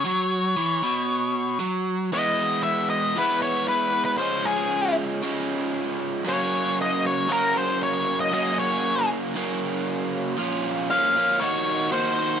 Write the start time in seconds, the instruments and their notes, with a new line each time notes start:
Already playing: lead electric guitar C#5
0.05 overdriven electric guitar F#3
0.57 overdriven electric guitar E3
0.84 overdriven electric guitar B2
1.60 overdriven electric guitar F#3
2.12 overdriven electric guitar E3 G#3 B3 E4, lead electric guitar D#5
2.63 lead electric guitar E5
2.90 lead electric guitar D#5
3.16 overdriven electric guitar E3 G#3 B3 E4, lead electric guitar B4
3.42 lead electric guitar C#5
3.68 lead electric guitar B4
4.05 lead electric guitar B4
4.18 overdriven electric guitar C#3 F3 G#3 C#4, lead electric guitar C5
4.45 lead electric guitar G#4
5.22 overdriven electric guitar C#3 F3 G#3 C#4
6.25 overdriven electric guitar F#2 C#3 F#3 A#3 C#4
6.29 lead electric guitar C#5
6.82 lead electric guitar D#5
7.07 lead electric guitar C#5
7.29 overdriven electric guitar F#2 C#3 F#3 A#3 C#4, lead electric guitar A#4
7.57 lead electric guitar C5
7.83 lead electric guitar C#5
8.21 lead electric guitar D#5
8.32 overdriven electric guitar F#2 C#3 F#3 A#3 C#4, lead electric guitar D#5
8.59 lead electric guitar C#5
9.35 overdriven electric guitar F#2 C#3 F#3 A#3 C#4
10.37 overdriven electric guitar A#2 F3 A#3 C#4 F4
10.90 overdriven electric guitar F3 A#3 C#4 F4, lead electric guitar F5
11.16 overdriven electric guitar A#3 C#4 F4
11.40 overdriven electric guitar D#3 A#3 D#4 F#4, lead electric guitar C#5
11.92 overdriven electric guitar D#3 A#3 D#4 F#4, lead electric guitar C5
12.19 overdriven electric guitar A#3 D#4 F#4